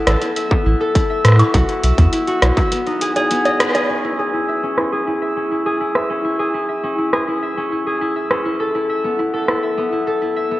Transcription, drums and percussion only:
0, 0, Header, 1, 2, 480
1, 0, Start_track
1, 0, Key_signature, 4, "minor"
1, 0, Tempo, 588235
1, 1257, Time_signature, 4, 2, 24, 8
1, 8649, End_track
2, 0, Start_track
2, 0, Title_t, "Drums"
2, 58, Note_on_c, 9, 37, 103
2, 58, Note_on_c, 9, 42, 75
2, 58, Note_on_c, 9, 60, 60
2, 140, Note_off_c, 9, 37, 0
2, 140, Note_off_c, 9, 42, 0
2, 140, Note_off_c, 9, 60, 0
2, 177, Note_on_c, 9, 42, 48
2, 259, Note_off_c, 9, 42, 0
2, 298, Note_on_c, 9, 42, 71
2, 379, Note_off_c, 9, 42, 0
2, 418, Note_on_c, 9, 36, 110
2, 499, Note_off_c, 9, 36, 0
2, 778, Note_on_c, 9, 36, 106
2, 778, Note_on_c, 9, 42, 75
2, 859, Note_off_c, 9, 36, 0
2, 859, Note_off_c, 9, 42, 0
2, 1018, Note_on_c, 9, 37, 102
2, 1018, Note_on_c, 9, 42, 76
2, 1048, Note_off_c, 9, 37, 0
2, 1048, Note_on_c, 9, 37, 86
2, 1078, Note_off_c, 9, 37, 0
2, 1078, Note_on_c, 9, 37, 68
2, 1100, Note_off_c, 9, 42, 0
2, 1109, Note_off_c, 9, 37, 0
2, 1109, Note_on_c, 9, 37, 55
2, 1138, Note_on_c, 9, 42, 52
2, 1138, Note_on_c, 9, 60, 81
2, 1190, Note_off_c, 9, 37, 0
2, 1220, Note_off_c, 9, 42, 0
2, 1220, Note_off_c, 9, 60, 0
2, 1258, Note_on_c, 9, 36, 111
2, 1259, Note_on_c, 9, 42, 75
2, 1340, Note_off_c, 9, 36, 0
2, 1340, Note_off_c, 9, 42, 0
2, 1379, Note_on_c, 9, 42, 36
2, 1460, Note_off_c, 9, 42, 0
2, 1498, Note_on_c, 9, 42, 81
2, 1580, Note_off_c, 9, 42, 0
2, 1618, Note_on_c, 9, 36, 96
2, 1618, Note_on_c, 9, 42, 53
2, 1700, Note_off_c, 9, 36, 0
2, 1700, Note_off_c, 9, 42, 0
2, 1738, Note_on_c, 9, 42, 75
2, 1819, Note_off_c, 9, 42, 0
2, 1858, Note_on_c, 9, 42, 37
2, 1939, Note_off_c, 9, 42, 0
2, 1978, Note_on_c, 9, 37, 110
2, 1978, Note_on_c, 9, 42, 77
2, 1978, Note_on_c, 9, 60, 58
2, 2060, Note_off_c, 9, 37, 0
2, 2060, Note_off_c, 9, 42, 0
2, 2060, Note_off_c, 9, 60, 0
2, 2098, Note_on_c, 9, 36, 107
2, 2098, Note_on_c, 9, 42, 52
2, 2180, Note_off_c, 9, 36, 0
2, 2180, Note_off_c, 9, 42, 0
2, 2218, Note_on_c, 9, 42, 78
2, 2300, Note_off_c, 9, 42, 0
2, 2338, Note_on_c, 9, 42, 36
2, 2420, Note_off_c, 9, 42, 0
2, 2458, Note_on_c, 9, 42, 80
2, 2539, Note_off_c, 9, 42, 0
2, 2578, Note_on_c, 9, 42, 52
2, 2578, Note_on_c, 9, 60, 53
2, 2660, Note_off_c, 9, 42, 0
2, 2660, Note_off_c, 9, 60, 0
2, 2698, Note_on_c, 9, 42, 78
2, 2779, Note_off_c, 9, 42, 0
2, 2818, Note_on_c, 9, 42, 36
2, 2818, Note_on_c, 9, 60, 82
2, 2899, Note_off_c, 9, 42, 0
2, 2899, Note_off_c, 9, 60, 0
2, 2938, Note_on_c, 9, 37, 118
2, 2938, Note_on_c, 9, 42, 75
2, 2938, Note_on_c, 9, 60, 38
2, 3020, Note_off_c, 9, 37, 0
2, 3020, Note_off_c, 9, 42, 0
2, 3020, Note_off_c, 9, 60, 0
2, 3058, Note_on_c, 9, 42, 51
2, 3058, Note_on_c, 9, 60, 85
2, 3139, Note_off_c, 9, 42, 0
2, 3139, Note_off_c, 9, 60, 0
2, 3898, Note_on_c, 9, 37, 109
2, 3979, Note_off_c, 9, 37, 0
2, 4857, Note_on_c, 9, 37, 113
2, 4939, Note_off_c, 9, 37, 0
2, 5818, Note_on_c, 9, 37, 115
2, 5899, Note_off_c, 9, 37, 0
2, 6778, Note_on_c, 9, 37, 118
2, 6859, Note_off_c, 9, 37, 0
2, 7738, Note_on_c, 9, 37, 109
2, 7819, Note_off_c, 9, 37, 0
2, 8649, End_track
0, 0, End_of_file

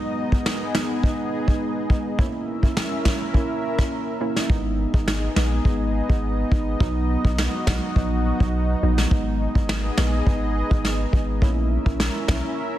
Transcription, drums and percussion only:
0, 0, Header, 1, 2, 480
1, 0, Start_track
1, 0, Key_signature, 5, "minor"
1, 0, Tempo, 576923
1, 1820, Time_signature, 4, 2, 24, 8
1, 10636, End_track
2, 0, Start_track
2, 0, Title_t, "Drums"
2, 267, Note_on_c, 9, 36, 91
2, 351, Note_off_c, 9, 36, 0
2, 382, Note_on_c, 9, 38, 115
2, 465, Note_off_c, 9, 38, 0
2, 621, Note_on_c, 9, 38, 117
2, 704, Note_off_c, 9, 38, 0
2, 861, Note_on_c, 9, 36, 90
2, 944, Note_off_c, 9, 36, 0
2, 1230, Note_on_c, 9, 36, 87
2, 1313, Note_off_c, 9, 36, 0
2, 1580, Note_on_c, 9, 36, 90
2, 1663, Note_off_c, 9, 36, 0
2, 1820, Note_on_c, 9, 36, 118
2, 1903, Note_off_c, 9, 36, 0
2, 2188, Note_on_c, 9, 36, 91
2, 2271, Note_off_c, 9, 36, 0
2, 2302, Note_on_c, 9, 38, 117
2, 2385, Note_off_c, 9, 38, 0
2, 2540, Note_on_c, 9, 38, 114
2, 2543, Note_on_c, 9, 36, 91
2, 2623, Note_off_c, 9, 38, 0
2, 2626, Note_off_c, 9, 36, 0
2, 2781, Note_on_c, 9, 36, 85
2, 2865, Note_off_c, 9, 36, 0
2, 3150, Note_on_c, 9, 37, 91
2, 3151, Note_on_c, 9, 36, 88
2, 3233, Note_off_c, 9, 37, 0
2, 3234, Note_off_c, 9, 36, 0
2, 3630, Note_on_c, 9, 38, 62
2, 3714, Note_off_c, 9, 38, 0
2, 3741, Note_on_c, 9, 36, 119
2, 3824, Note_off_c, 9, 36, 0
2, 4109, Note_on_c, 9, 36, 94
2, 4192, Note_off_c, 9, 36, 0
2, 4223, Note_on_c, 9, 38, 115
2, 4306, Note_off_c, 9, 38, 0
2, 4462, Note_on_c, 9, 38, 118
2, 4545, Note_off_c, 9, 38, 0
2, 4702, Note_on_c, 9, 36, 83
2, 4785, Note_off_c, 9, 36, 0
2, 5071, Note_on_c, 9, 36, 92
2, 5155, Note_off_c, 9, 36, 0
2, 5421, Note_on_c, 9, 36, 92
2, 5504, Note_off_c, 9, 36, 0
2, 5661, Note_on_c, 9, 36, 122
2, 5744, Note_off_c, 9, 36, 0
2, 6029, Note_on_c, 9, 36, 88
2, 6112, Note_off_c, 9, 36, 0
2, 6143, Note_on_c, 9, 38, 113
2, 6226, Note_off_c, 9, 38, 0
2, 6381, Note_on_c, 9, 38, 118
2, 6384, Note_on_c, 9, 36, 91
2, 6465, Note_off_c, 9, 38, 0
2, 6467, Note_off_c, 9, 36, 0
2, 6622, Note_on_c, 9, 36, 87
2, 6706, Note_off_c, 9, 36, 0
2, 6992, Note_on_c, 9, 36, 91
2, 7075, Note_off_c, 9, 36, 0
2, 7471, Note_on_c, 9, 38, 64
2, 7554, Note_off_c, 9, 38, 0
2, 7582, Note_on_c, 9, 36, 121
2, 7665, Note_off_c, 9, 36, 0
2, 7949, Note_on_c, 9, 36, 90
2, 8032, Note_off_c, 9, 36, 0
2, 8062, Note_on_c, 9, 38, 115
2, 8146, Note_off_c, 9, 38, 0
2, 8299, Note_on_c, 9, 38, 120
2, 8383, Note_off_c, 9, 38, 0
2, 8541, Note_on_c, 9, 36, 89
2, 8625, Note_off_c, 9, 36, 0
2, 8911, Note_on_c, 9, 36, 91
2, 8994, Note_off_c, 9, 36, 0
2, 9024, Note_on_c, 9, 38, 65
2, 9107, Note_off_c, 9, 38, 0
2, 9261, Note_on_c, 9, 36, 90
2, 9344, Note_off_c, 9, 36, 0
2, 9500, Note_on_c, 9, 36, 120
2, 9584, Note_off_c, 9, 36, 0
2, 9868, Note_on_c, 9, 36, 93
2, 9951, Note_off_c, 9, 36, 0
2, 9982, Note_on_c, 9, 38, 115
2, 10065, Note_off_c, 9, 38, 0
2, 10220, Note_on_c, 9, 38, 120
2, 10222, Note_on_c, 9, 36, 93
2, 10303, Note_off_c, 9, 38, 0
2, 10305, Note_off_c, 9, 36, 0
2, 10636, End_track
0, 0, End_of_file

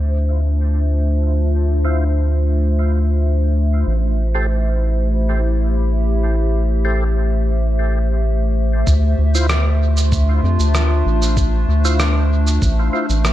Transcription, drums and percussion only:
0, 0, Header, 1, 2, 480
1, 0, Start_track
1, 0, Tempo, 625000
1, 1053, Time_signature, 4, 2, 24, 8
1, 10237, End_track
2, 0, Start_track
2, 0, Title_t, "Drums"
2, 6813, Note_on_c, 9, 36, 106
2, 6813, Note_on_c, 9, 69, 44
2, 6890, Note_off_c, 9, 36, 0
2, 6890, Note_off_c, 9, 69, 0
2, 7179, Note_on_c, 9, 69, 55
2, 7256, Note_off_c, 9, 69, 0
2, 7292, Note_on_c, 9, 37, 82
2, 7292, Note_on_c, 9, 69, 44
2, 7369, Note_off_c, 9, 37, 0
2, 7369, Note_off_c, 9, 69, 0
2, 7659, Note_on_c, 9, 69, 52
2, 7736, Note_off_c, 9, 69, 0
2, 7773, Note_on_c, 9, 36, 106
2, 7773, Note_on_c, 9, 69, 42
2, 7849, Note_off_c, 9, 69, 0
2, 7850, Note_off_c, 9, 36, 0
2, 8140, Note_on_c, 9, 69, 53
2, 8216, Note_off_c, 9, 69, 0
2, 8253, Note_on_c, 9, 37, 79
2, 8253, Note_on_c, 9, 69, 43
2, 8330, Note_off_c, 9, 37, 0
2, 8330, Note_off_c, 9, 69, 0
2, 8619, Note_on_c, 9, 69, 53
2, 8696, Note_off_c, 9, 69, 0
2, 8732, Note_on_c, 9, 36, 110
2, 8733, Note_on_c, 9, 69, 42
2, 8809, Note_off_c, 9, 36, 0
2, 8810, Note_off_c, 9, 69, 0
2, 9100, Note_on_c, 9, 69, 56
2, 9176, Note_off_c, 9, 69, 0
2, 9213, Note_on_c, 9, 37, 80
2, 9213, Note_on_c, 9, 69, 46
2, 9290, Note_off_c, 9, 37, 0
2, 9290, Note_off_c, 9, 69, 0
2, 9578, Note_on_c, 9, 69, 52
2, 9655, Note_off_c, 9, 69, 0
2, 9692, Note_on_c, 9, 36, 104
2, 9693, Note_on_c, 9, 69, 44
2, 9769, Note_off_c, 9, 36, 0
2, 9770, Note_off_c, 9, 69, 0
2, 10059, Note_on_c, 9, 69, 52
2, 10136, Note_off_c, 9, 69, 0
2, 10174, Note_on_c, 9, 37, 82
2, 10174, Note_on_c, 9, 69, 43
2, 10237, Note_off_c, 9, 37, 0
2, 10237, Note_off_c, 9, 69, 0
2, 10237, End_track
0, 0, End_of_file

